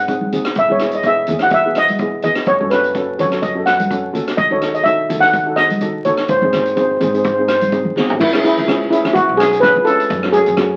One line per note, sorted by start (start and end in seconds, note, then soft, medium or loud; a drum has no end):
0.00 0.23 G#2 medium
0.00 0.30 F#5 medium
0.08 0.23 C4 medium
0.08 0.24 D#4 medium
0.08 0.24 G#4 medium
0.08 kick medium
0.08 closed hi-hat medium
0.21 high conga medium
0.32 0.54 C4 medium
0.32 0.54 D#4 medium
0.32 0.54 G#4 medium
0.32 closed hi-hat medium
0.32 low conga medium
0.45 cross-stick medium
0.45 closed hi-hat medium
0.55 0.68 E1 medium
0.55 0.71 E5 medium
0.55 kick medium
0.55 closed hi-hat medium
0.68 1.22 E1 medium
0.68 0.76 B3 medium
0.68 0.76 E4 medium
0.68 0.76 G#4 medium
0.68 0.95 C#5 medium
0.68 high conga medium
0.79 0.96 B3 medium
0.79 0.96 E4 medium
0.79 0.96 G#4 medium
0.79 cross-stick medium
0.79 closed hi-hat medium
0.91 1.05 D#5 medium
0.91 closed hi-hat medium
1.03 1.20 B3 medium
1.03 1.20 E4 medium
1.03 1.20 G#4 medium
1.03 1.43 E5 loud
1.03 kick medium
1.03 closed hi-hat medium
1.27 2.13 E2 medium
1.27 1.37 B3 medium
1.27 1.37 E4 medium
1.27 closed hi-hat medium
1.27 low conga medium
1.31 1.37 G#4 medium
1.39 1.55 B3 medium
1.39 1.55 E4 medium
1.39 1.55 F#4 medium
1.39 1.53 F#5 medium
1.39 cross-stick medium
1.39 closed hi-hat medium
1.50 1.78 E5 loud
1.50 kick loud
1.50 closed hi-hat medium
1.65 1.87 B3 medium
1.65 1.87 E4 medium
1.65 1.87 G#4 medium
1.75 2.21 D#5 medium
1.75 cross-stick medium
1.75 closed hi-hat medium
1.88 closed hi-hat medium
1.88 high conga medium
1.98 2.15 B3 medium
1.98 2.16 E4 medium
1.98 2.16 G#4 medium
1.98 kick medium
1.98 closed hi-hat medium
2.22 2.45 B3 medium
2.22 2.45 E4 medium
2.22 2.46 G#4 medium
2.22 2.48 D#5 medium
2.22 closed hi-hat medium
2.22 low conga medium
2.35 cross-stick medium
2.35 closed hi-hat medium
2.46 2.59 F#1 medium
2.46 2.72 C#5 medium
2.46 kick medium
2.46 closed hi-hat soft
2.59 3.13 F#1 medium
2.59 2.67 C#4 medium
2.59 2.67 F#4 medium
2.59 2.67 A4 medium
2.59 high conga medium
2.70 2.87 C#4 medium
2.70 2.87 F#4 medium
2.70 2.87 A4 medium
2.70 3.15 B4 medium
2.70 cross-stick medium
2.70 closed hi-hat medium
2.84 closed hi-hat medium
2.95 3.10 C#4 medium
2.95 3.10 F#4 medium
2.95 3.11 A4 medium
2.95 kick medium
2.95 closed hi-hat medium
3.18 4.06 F#2 medium
3.18 3.26 C#4 medium
3.18 3.27 F#4 medium
3.18 3.27 A4 medium
3.18 3.42 C#5 medium
3.18 closed hi-hat medium
3.18 low conga medium
3.31 3.45 C#4 medium
3.31 3.45 F#4 medium
3.31 3.45 A4 medium
3.31 cross-stick medium
3.31 closed hi-hat medium
3.42 3.65 D#5 medium
3.42 kick loud
3.42 closed hi-hat medium
3.55 3.77 C#4 medium
3.55 3.77 F#4 medium
3.55 3.77 A4 medium
3.66 4.11 F#5 medium
3.66 cross-stick medium
3.66 closed hi-hat medium
3.80 closed hi-hat medium
3.80 high conga medium
3.90 4.06 C#4 medium
3.90 4.06 F#4 medium
3.90 4.06 A4 medium
3.90 kick medium
3.90 closed hi-hat medium
4.13 4.36 C#4 medium
4.13 4.36 F#4 medium
4.13 4.36 A4 medium
4.13 closed hi-hat medium
4.13 low conga medium
4.28 cross-stick medium
4.28 closed hi-hat medium
4.37 4.50 D#2 medium
4.37 4.51 D#5 loud
4.37 kick loud
4.37 closed hi-hat medium
4.50 5.04 D#2 medium
4.50 4.58 D#4 medium
4.50 4.58 F#4 medium
4.50 4.58 A4 medium
4.50 4.76 C#5 medium
4.62 4.77 D#4 medium
4.62 4.77 F#4 medium
4.62 4.78 A4 medium
4.62 cross-stick medium
4.62 closed hi-hat medium
4.74 4.86 D#5 medium
4.74 closed hi-hat medium
4.84 5.01 D#4 medium
4.84 5.01 F#4 medium
4.84 5.01 A4 medium
4.84 5.23 E5 loud
4.84 kick medium
4.84 closed hi-hat medium
5.09 5.96 D#3 medium
5.09 5.17 D#4 medium
5.09 5.18 F#4 medium
5.09 5.18 A4 medium
5.09 closed hi-hat medium
5.09 low conga medium
5.20 5.36 D#4 medium
5.20 5.36 F#4 medium
5.20 5.37 A4 medium
5.20 5.54 F#5 medium
5.20 cross-stick medium
5.20 closed hi-hat medium
5.33 kick medium
5.33 closed hi-hat medium
5.46 5.68 D#4 medium
5.46 5.68 F#4 medium
5.46 5.68 A4 medium
5.56 6.06 D#5 loud
5.56 cross-stick medium
5.56 closed hi-hat medium
5.70 closed hi-hat medium
5.70 high conga medium
5.81 5.97 D#4 medium
5.81 5.97 F#4 medium
5.81 5.97 A4 medium
5.81 kick medium
5.81 closed hi-hat medium
6.05 6.27 D#4 medium
6.05 6.27 F#4 medium
6.05 6.28 A4 medium
6.05 6.30 C#5 medium
6.05 closed hi-hat medium
6.05 low conga medium
6.17 cross-stick medium
6.17 closed hi-hat medium
6.28 6.41 G#1 medium
6.28 6.36 C5 medium
6.28 kick medium
6.28 closed hi-hat medium
6.37 6.44 C5 medium
6.42 6.95 G#1 medium
6.42 6.49 C4 medium
6.42 6.49 D#4 medium
6.42 6.49 G#4 medium
6.42 6.51 C5 medium
6.42 high conga medium
6.53 6.68 C4 medium
6.53 6.68 D#4 medium
6.53 6.68 G#4 medium
6.53 6.58 C5 soft
6.53 cross-stick medium
6.53 closed hi-hat medium
6.53 low conga medium
6.60 6.67 C5 medium
6.66 6.75 C5 soft
6.66 closed hi-hat medium
6.76 6.92 C4 medium
6.76 6.92 D#4 medium
6.76 6.92 G#4 medium
6.76 6.80 C5 medium
6.76 kick medium
6.76 closed hi-hat medium
6.82 6.89 C5 soft
6.91 6.95 C5 soft
6.97 7.08 C4 medium
6.97 7.08 D#4 medium
6.97 7.09 G#4 medium
6.97 7.03 C5 soft
6.97 closed hi-hat medium
7.01 7.86 G#2 medium
7.01 7.10 C5 medium
7.01 low conga medium
7.11 7.27 C4 medium
7.11 7.28 D#4 medium
7.11 7.28 G#4 medium
7.11 7.18 C5 soft
7.11 closed hi-hat soft
7.19 7.25 C5 soft
7.24 7.33 C5 medium
7.24 kick loud
7.24 closed hi-hat medium
7.34 7.41 C5 medium
7.38 7.59 C4 medium
7.38 7.59 D#4 medium
7.38 7.60 G#4 medium
7.38 7.47 C5 soft
7.48 7.55 C5 medium
7.48 cross-stick medium
7.48 closed hi-hat medium
7.57 7.64 C5 medium
7.61 closed hi-hat medium
7.61 high conga medium
7.72 7.87 C4 medium
7.72 7.87 D#4 medium
7.72 7.88 G#4 medium
7.72 kick medium
7.72 closed hi-hat medium
7.85 high conga medium
7.96 8.18 C4 medium
7.96 8.18 D#4 medium
7.96 8.18 G#4 medium
7.96 snare medium
7.96 low conga medium
8.10 floor tom medium
8.20 8.53 C#2 medium
8.20 8.43 E4 medium
8.20 kick loud
8.20 crash loud
8.33 8.40 C#4 medium
8.33 8.40 E4 medium
8.33 8.40 G#4 medium
8.33 cross-stick medium
8.43 8.59 C#4 medium
8.43 8.59 E4 medium
8.43 8.89 E4 medium
8.43 8.59 G#4 medium
8.43 closed hi-hat medium
8.58 9.00 C#2 medium
8.58 closed hi-hat medium
8.67 8.83 C#4 medium
8.67 8.82 E4 medium
8.67 8.83 G#4 medium
8.67 kick medium
8.67 cross-stick medium
8.67 closed hi-hat medium
8.90 9.20 C#4 medium
8.90 9.15 E4 medium
8.90 9.20 E4 medium
8.90 9.20 G#4 medium
8.90 closed hi-hat medium
9.05 9.26 C#2 medium
9.05 cross-stick medium
9.05 closed hi-hat medium
9.13 9.24 F#4 loud
9.13 kick loud
9.13 closed hi-hat medium
9.29 9.71 B1 medium
9.37 9.54 C#4 medium
9.37 9.54 E4 medium
9.37 9.63 G#4 loud
9.37 9.54 G#4 medium
9.37 cross-stick medium
9.37 closed hi-hat medium
9.53 closed hi-hat medium
9.60 9.78 C#4 medium
9.60 9.78 E4 medium
9.60 9.78 G#4 medium
9.60 9.86 B4 loud
9.60 kick medium
9.60 cross-stick medium
9.60 closed hi-hat medium
9.76 10.07 C#2 loud
9.85 10.09 C#4 medium
9.85 10.08 E4 medium
9.85 10.30 A4 loud
9.85 10.09 B4 medium
9.85 closed hi-hat medium
10.00 closed hi-hat medium
10.10 10.43 F#2 medium
10.10 kick loud
10.10 closed hi-hat medium
10.23 10.30 A3 medium
10.23 10.30 C#4 medium
10.23 10.30 F#4 medium
10.23 cross-stick medium
10.32 10.50 A3 medium
10.32 10.50 C#4 medium
10.32 10.50 F#4 medium
10.32 10.77 G#4 loud
10.32 closed hi-hat medium
10.46 10.77 F#2 medium
10.46 closed hi-hat medium
10.57 10.73 A3 medium
10.57 10.73 C#4 medium
10.57 10.73 F#4 medium
10.57 kick medium
10.57 cross-stick medium
10.57 closed hi-hat medium